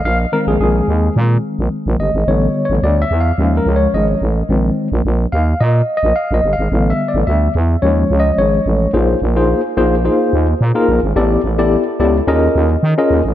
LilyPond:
<<
  \new Staff \with { instrumentName = "Tine electric piano" } { \time 4/4 \key bes \dorian \tempo 4 = 108 f''8 bes'16 aes'16 aes'4 r4. ees''8 | \tuplet 3/2 { des''4 des''8 d''8 e''8 f''8~ f''8 bes'8 des''8 } ees''8 r8 | r4. f''8 \tuplet 3/2 { ees''4 ees''8 f''8 ees''8 f''8~ } | \tuplet 3/2 { f''8 e''8 d''8 } e''8 r8 \tuplet 3/2 { des''4 ees''8 } des''4 |
<bes ees' f' aes' c''>8 r16 <bes ees' f' aes' c''>8 r16 <bes ees' f' aes' c''>16 r16 <bes ees' f' aes' c''>8. r8 <bes ees' f' aes' bes'>8 r16 | <b e' g' a' d''>8 r16 <b e' g' a' d''>8 r16 <b e' g' a' d''>16 r16 <des' f' aes' bes' ees''>8. r8 <des' f' aes' bes' ees''>8 r16 | }
  \new Staff \with { instrumentName = "Tine electric piano" } { \clef bass \time 4/4 \key bes \dorian r8 <ees aes c'>2.~ <ees aes c'>8 | <d g b>4. r8 <f aes des'>4. r8 | <ees aes c'>8 r2. r8 | <d g b>4. r8 <f aes des'>2 |
r1 | r1 | }
  \new Staff \with { instrumentName = "FM bass" } { \clef bass \time 4/4 \key bes \dorian bes,,8 r16 bes,,16 bes,,8 ees,8 bes,8 r16 bes,,16 r16 bes,,16 g,,16 aes,,16 | a,,8 r16 a,,16 d,8 e,8 ees,8 des,8 aes,,8 a,,8 | bes,,8 r16 bes,,16 bes,,8 ees,8 bes,8 r16 bes,,16 r16 bes,,16 g,,16 aes,,16 | a,,8 r16 a,,16 d,8 e,8 ees,8 des,8 aes,,8 a,,8 |
bes,,8 bes,,8. r16 bes,,8. r16 ees,8 bes,16 r16 bes,,16 aes,,16 | a,,8 a,,8. r16 des,8 ees,8 ees,8 ees16 r16 ees,16 a,,16 | }
>>